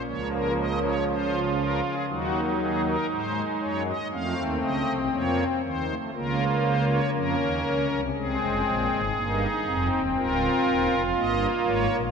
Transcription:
0.06 1.81 C#2 medium
0.06 1.81 C#3 medium
0.06 1.81 F3 medium
0.06 0.94 A#3 medium
0.06 0.28 C#5 medium
0.31 0.53 A#4 medium
0.58 0.79 D#5 medium
0.82 1.04 C#5 medium
1.08 1.95 F4 medium
1.08 1.39 C5 medium
1.58 1.80 A#4 medium
1.83 2.05 G#4 medium
2.08 2.96 D#2 medium
2.08 2.96 D#3 medium
2.08 2.96 F#3 medium
2.08 3.83 D#4 medium
2.08 2.40 F#4 medium
2.59 2.81 G#4 medium
2.85 3.07 A#4 medium
3.10 3.42 G#2 medium
3.10 3.97 G#3 medium
3.10 3.42 C5 medium
3.60 3.92 F#2 medium
3.60 3.92 F#3 medium
3.60 3.82 C#5 medium
3.86 4.08 D#5 medium
4.12 4.33 F2 medium
4.12 4.34 F3 medium
4.12 4.99 A3 medium
4.12 5.61 C4 medium
4.12 4.43 F5 loud
4.36 4.58 D#2 medium
4.36 4.58 D#3 medium
4.61 4.83 C#2 medium
4.61 4.83 C#3 medium
4.61 4.93 D#5 medium
4.87 5.09 C2 medium
4.87 5.09 C3 medium
5.12 5.44 F2 medium
5.12 5.44 F3 medium
5.12 5.44 A#3 medium
5.12 5.44 C#5 medium
5.63 5.94 D#2 medium
5.63 5.94 D#3 medium
5.63 5.85 C4 medium
5.63 5.94 C5 medium
5.89 6.10 A3 medium
6.13 7.00 C#2 medium
6.13 7.00 C#3 medium
6.13 7.87 A#3 medium
6.13 7.00 F4 medium
6.13 6.45 A#4 medium
6.63 6.85 C5 medium
6.88 7.10 C#5 medium
7.13 7.35 F2 medium
7.13 7.35 F3 medium
7.13 8.01 C#4 medium
7.13 8.01 A#4 medium
7.38 7.61 D#2 medium
7.38 7.60 D#3 medium
7.64 7.86 C#2 medium
7.64 7.86 C#3 medium
7.89 8.11 C2 medium
7.89 8.11 C3 medium
8.15 8.36 C2 medium
8.15 8.36 C3 medium
8.15 9.01 G#3 medium
8.15 9.01 C4 medium
8.15 9.87 G#4 medium
8.39 8.62 F1 medium
8.39 8.61 F2 medium
8.65 8.87 A#1 loud
8.65 8.87 A#2 medium
8.91 9.12 G#1 medium
8.91 9.12 G#2 medium
9.15 9.47 G1 medium
9.15 9.47 G2 medium
9.15 9.46 A#3 medium
9.15 10.02 D#4 medium
9.66 9.87 F1 medium
9.66 9.87 F2 medium
9.66 10.95 C4 medium
9.91 10.12 D#1 medium
9.91 10.12 D#2 medium
10.16 10.47 C#1 medium
10.16 10.47 C#2 medium
10.16 11.88 F4 medium
10.16 11.02 A#4 medium
10.65 10.87 D#1 loud
10.65 10.87 D#2 loud
10.91 11.12 F1 medium
10.91 11.12 F2 medium
11.15 11.46 G1 medium
11.15 11.46 G2 medium
11.15 12.01 A#3 medium
11.15 11.46 D#5 medium
11.65 11.87 G#1 loud
11.65 11.87 G#2 medium
11.65 11.96 C#5 medium
11.91 12.11 A#1 medium
11.91 12.11 A#2 medium

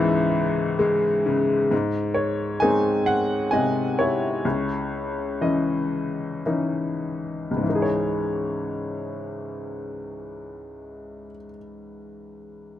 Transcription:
0.00 1.68 C#2 medium
0.00 1.22 G#2 soft
0.00 1.68 E3 medium
0.00 0.76 E5 medium
0.00 0.76 C#6 medium
0.79 1.69 G#3 medium
1.26 1.70 C#3 medium
1.71 4.41 G#2 soft
2.14 2.62 C#5 medium
2.60 3.50 G#3 soft
2.60 3.50 C4 soft
2.60 3.50 D#4 soft
2.60 3.03 G#5 medium
3.06 3.54 F#5 medium
3.51 4.42 C3 soft
3.51 4.42 G#3 soft
3.51 4.42 D#5 soft
3.51 3.99 G#5 medium
3.99 6.43 E4 soft
3.99 6.42 C#5 medium
4.45 7.49 C#2 soft
5.41 6.43 E3 soft
5.41 6.43 C#4 soft
5.41 6.43 D#5 soft
6.46 7.62 E3 soft
6.46 7.62 C#4 soft
6.46 7.62 D#4 soft
7.51 11.25 C#2 soft
7.57 11.31 G#2 soft
7.63 11.37 E3 soft
7.69 11.44 D#4 soft
7.75 11.49 G#4 soft
7.82 11.56 C#5 soft

